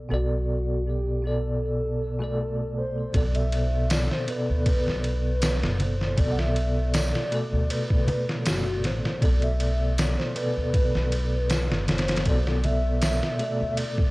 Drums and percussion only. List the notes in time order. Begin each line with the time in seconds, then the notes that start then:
3.14 kick, ride
3.35 ride
3.52 ride
3.90 snare, ride, tambourine
4.11 snare
4.28 ride
4.66 kick, ride
4.88 snare
5.04 ride
5.42 snare, ride, tambourine
5.64 snare
5.80 ride, low conga
6.01 snare
6.18 kick, ride
6.39 snare
6.56 ride
6.94 snare, ride, tambourine
7.15 snare
7.32 ride
7.70 ride
7.90 kick
8.08 ride, low conga
8.29 snare
8.46 snare, ride, tambourine
8.84 snare, ride
9.05 snare
9.22 kick, ride
9.42 ride
9.60 ride
9.98 snare, ride, tambourine
10.20 snare
10.36 ride
10.74 kick, ride
10.95 snare
11.12 ride
11.50 snare, ride, tambourine
11.72 snare
11.88 snare, ride, low conga
11.98 snare, ride
12.08 snare, ride
12.16 snare, ride
12.25 kick, ride
12.47 snare
12.64 ride, low conga
13.02 snare, ride, tambourine
13.23 snare
13.39 ride
13.77 ride
13.98 kick